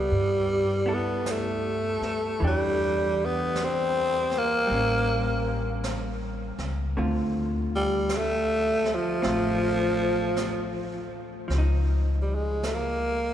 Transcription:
Already playing: G3 B3 E4 A4
0.11 G2, brush sweep
0.86 B3 E4 A4
0.94 B3
1.26 brush sweep, snare, hi-hat pedal
1.31 A3
2.01 muted upright bass stroke, snare
2.40 E2 E3, brush sweep
2.44 G3 D4 G4
3.25 B3
3.55 brush sweep, snare, hi-hat pedal
3.64 C4
4.31 snare
4.38 A#3
4.67 A1 G3 A#3, brush sweep
4.73 C#4
5.84 brush sweep, snare, hi-hat pedal
6.58 C#2, snare
6.97 D2 D3 A3 C4 F4, brush sweep
7.75 G3
8.09 brush sweep, snare, hi-hat pedal
8.18 A3
8.85 snare
8.95 F3
9.22 A1 A3 C4 F4, brush sweep, snare
10.36 brush sweep, snare, hi-hat pedal
11.48 C#2 F3, brush sweep, snare
11.58 D#4
12.22 G3
12.35 G#3
12.63 A3, brush sweep, snare, hi-hat pedal
12.75 A#3

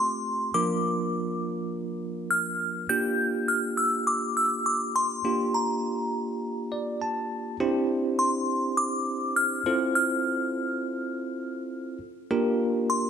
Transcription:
Already playing: A3 C4 F4 G4 C6
0.54 F3 A#3 D4 F4 A#4 D6
2.31 F6
2.89 A#3 D4 F4 G4 G6
3.48 F6
3.77 E6
4.07 D6
4.37 E6
4.66 D6
4.96 C6
5.25 A#3 D4 F4 G4
5.54 A#5
6.72 D5
7.02 A5
7.60 C4 D4 E4 G4 C5
8.19 C6
8.77 D6
9.36 F6
9.66 C4 E4 F4 A4 C5
9.95 F6
12.31 A#3 D4 F4 G4 A#4
12.90 C6

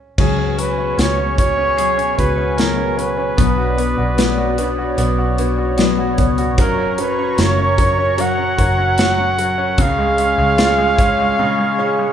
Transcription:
Already playing: C#4
0.18 C#2 C#3 F#3 B3 C#4 F#4 G#4 C#5 G#5 C#6, kick, crash
0.39 C#4
0.58 C#4 B4, closed hi-hat
0.78 C#4
0.97 C#2 C#3 F#3 B3 C#4 F#4 G#4 C#5, snare, closed hi-hat
1.18 C#4
1.38 B3 C#4 F#4 G#4 C#5, kick, closed hi-hat
1.58 C#4
1.77 F#3 B3 F#4 G#4, closed hi-hat
1.97 C#4, closed hi-hat
2.18 C#2 B3 C#4 F#4 G#4 B4, kick, closed hi-hat
2.38 C#4
2.58 C#3 F#3 B3 C#4 F#4 G#4 A#4, snare, closed hi-hat
2.77 C#4
2.97 C#4 B4, closed hi-hat
3.17 C#4
3.37 B1 B2 F#3 B3 D4 F#4 B4 D5, kick, closed hi-hat
3.58 F#4
3.78 B3, closed hi-hat
3.98 B1 F#4
4.17 B2 F#3 B3 D4 F#4 B4, snare, closed hi-hat
4.38 F#4
4.58 B3 D4 F#4 B4, closed hi-hat
4.78 F#4
4.97 B1 B3 D4 F#4 B4, closed hi-hat
5.18 F#4
5.38 B3 D4 F#4 B4, closed hi-hat
5.58 F#4
5.78 B2 F#3 B3 D4 F#4 B4, snare, closed hi-hat
5.98 F#4
6.18 C#2 B3, kick, closed hi-hat
6.38 F#4, closed hi-hat
6.58 F#1 F#3 C#4 F4 A#4 A#5 C#6, kick, closed hi-hat
6.78 C#4
6.98 F#3 B4, closed hi-hat
7.18 C#4
7.37 F#1 F#3 C#4 F4 A#4 C#5, snare, closed hi-hat
7.58 C#4
7.78 F#3 C#4 F4 A#4, kick, closed hi-hat
7.98 C#4
8.18 F#3 C#4 A#4 F#5, closed hi-hat
8.38 C#4
8.58 F#1 F#3 C#4 A#4, kick, closed hi-hat
8.79 C#4
8.98 F#3 C#4 A#4, snare, closed hi-hat
9.18 C#4
9.39 F#3, closed hi-hat
9.58 C#4
9.78 C#2 C#3 G#3 C#4 F4 G#4 C#5 F5 C#6, kick, closed hi-hat
9.98 G#3
10.18 C#4, closed hi-hat
10.38 C#2 G#3
10.58 C#3 G#3 C#4 F4 G#4, snare, closed hi-hat
10.78 G#3
10.98 C#4 F4 G#4, kick, closed hi-hat
11.19 G#3
11.38 C#3 G#3 C#4 F4 G#4
11.59 G#3
11.78 C#4 F4 G#4
11.99 G#3

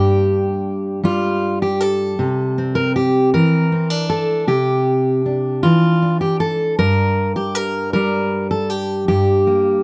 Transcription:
Already playing: G2 G3 D4 G4
1.03 G3 F4
1.62 G4
1.81 A4
2.19 C3
2.58 C4
2.75 A#4
2.96 G4
3.34 E3 A#4
3.72 C4
3.90 D4
4.10 A4
4.47 C3 G4
5.26 D4
5.63 E3 F4
6.02 D4
6.21 G4
6.40 A4
6.79 G2 A#4
7.36 G4
7.55 A#4
7.93 G3 A#4
8.51 A4
8.70 G4
9.08 G2 G4
9.47 A#3

